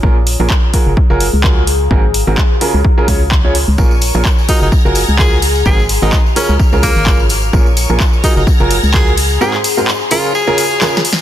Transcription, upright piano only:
X:1
M:4/4
L:1/16
Q:"Swing 16ths" 1/4=128
K:Gblyd
V:1 name="Upright piano"
[B,,DFAB] z2 [B,,DFAB] z2 [G,FGAB] z2 [G,FGAB] z2 [G,FGAB] z3 | [A,,CGAB] z2 [A,,CGAB] z2 [D,DFAB] z2 [D,DFAB] [D,DFAd] z2 [D,DFAd] z2 | [B,,DFAB] z2 [B,,DFAB] z2 [G,FGAB] z2 [G,FGAB] z2 [G,FGAB] z3 | [A,,CGAB] z2 [A,,CGAB] z2 [D,DFAB] z2 [D,DFAB] z2 [D,DFAB] z3 |
[B,,DFAB] z2 [B,,DFAB] z2 [G,FGAB] z2 [G,FGAB] z2 [G,FGAB] z3 | [A,,CGAB] z2 [A,,CGAB] z2 [D,DFAB] z2 [D,DFAB] z2 [D,DFAB] z3 |]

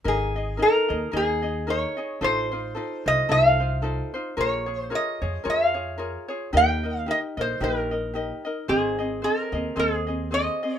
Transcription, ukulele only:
X:1
M:4/4
L:1/8
Q:"Swing" 1/4=111
K:Ab
V:1 name="Ukulele"
[EABe] [EAe] [EABe] [EAe] [EABe] [EAe] [EABe] [EAe] | [EF=Ac] [EFc] [EFAc] [EFc] [EFAc] [EFc] [EFAc] [EFc] | [FABd] [FAd] [FABd] [FAd] [FABd] [FAd] [FABd] [FAd] | [EGBe] [EBe] [EGBe] [EBe] [EGBe] [EBe] [EGBe] [EBe] |
[CAce] [CAe] [CAce] [CAe] [CAce] [CAe] [CAce] [CAe] |]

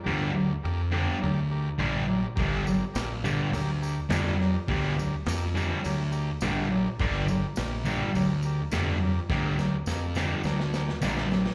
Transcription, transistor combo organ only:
X:1
M:4/4
L:1/8
Q:1/4=104
K:Gm
V:1 name="Transistor combo organ"
[GBd] [GBd] [GBd] [GBd] [GBd] [GBd] [GBd] [GBd] | [GBd] [GBd] [GBd] [GBd] [GBd] [GBd] [GBd] [GBd] | [GBd] [GBd] [GBd] [GBd] [GBd] [GBd] [GBd] [GBd] | [GBd] [GBd] [GBd] [GBd] [GBd] [GBd] [GBd] [GBd] |
[GBd] [GBd] [GBd] [GBd] [GBd] [GBd] [GBd] [GBd] |]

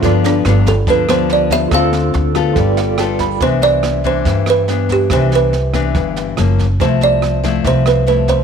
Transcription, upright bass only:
X:1
M:4/4
L:1/8
Q:1/4=142
K:C
V:1 name="Upright bass" clef=bass
G,,,2 G,,,2 D,,4 | D,,2 D,,2 G,,,4 | C,,4 G,,4 | C,,4 G,,,2 ^F,,,2 |
C,,4 C,,4 |]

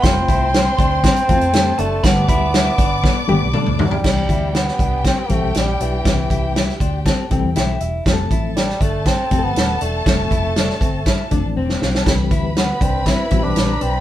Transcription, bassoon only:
X:1
M:4/4
L:1/16
Q:1/4=120
K:C
V:1 name="Bassoon"
C6 C8 A,2 | B,2 B,8 z4 G,2- | G,4 B,4 C A,3 G,2 E,2- | E,6 z8 z2 |
z4 G,2 A,2 C3 B,3 A,2- | A,8- A,2 z6 | z4 B,2 C2 E3 D3 C2 |]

